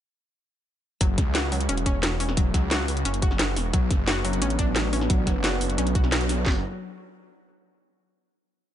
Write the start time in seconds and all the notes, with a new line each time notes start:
1.01 F#1 F#3, kick, closed hi-hat
1.18 C#2, kick, snare, closed hi-hat
1.35 F#4, snare, closed hi-hat
1.52 C#2 F#3, open hi-hat
1.60 closed hi-hat
1.69 E1 C#4, closed hi-hat
1.77 closed hi-hat
1.86 C#4, kick, closed hi-hat
2.03 F#4, snare, closed hi-hat
2.20 C#4, open hi-hat
2.29 snare
2.37 F#3, kick, closed hi-hat
2.54 C#2 F#3, kick, snare, closed hi-hat
2.71 F#4, snare, closed hi-hat
2.88 C#2, open hi-hat
2.97 closed hi-hat
3.05 F#1 C#4, closed hi-hat
3.14 closed hi-hat
3.22 F#4, kick, closed hi-hat
3.31 snare
3.39 F#1 F#4, snare, closed hi-hat
3.56 E1, snare, open hi-hat
3.73 B1 F#3 B3 D4, kick, closed hi-hat
3.91 F#1, kick, snare, closed hi-hat
4.08 F#4, snare, closed hi-hat
4.25 F#1 F#3, open hi-hat
4.33 closed hi-hat
4.42 A1 C#4, closed hi-hat
4.50 closed hi-hat
4.59 D4, kick, closed hi-hat
4.76 F#4, snare, closed hi-hat
4.93 C#4, open hi-hat
5.01 snare
5.10 F#3, kick, closed hi-hat
5.27 F#1 F#3, kick, snare, closed hi-hat
5.44 F#4, snare, closed hi-hat
5.61 F#1, open hi-hat
5.70 closed hi-hat
5.78 B1 C#4, closed hi-hat
5.87 closed hi-hat
5.95 F#4, kick, closed hi-hat
6.04 snare
6.12 F#4, snare, closed hi-hat
6.21 closed hi-hat
6.29 snare, open hi-hat
6.46 F#1 F#3, kick, snare, clap